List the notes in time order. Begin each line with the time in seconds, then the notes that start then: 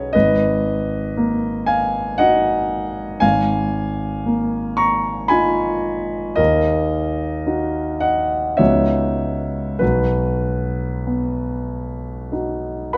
Already playing: F#3 C#4 F#4 G#4 B4 C#5 D#5
0.13 G#1 B4 D#5
1.17 A#3
1.66 F5 G#5
2.18 D#4 F#4 D#5 F#5
3.20 G#1 F5 G#5
4.26 A#3
4.77 A#5 C#6
5.28 D#4 F4 G#5 B5
6.36 D#2 A#4 D#5
7.47 D#4 F#4
8.00 D#5 F#5
8.57 C#2 B3 C#4 D#4 F#4 C#5 E5
9.79 B1 F#4 B4
11.07 B3
12.32 D#4 F#4
12.93 B4 F#5 B5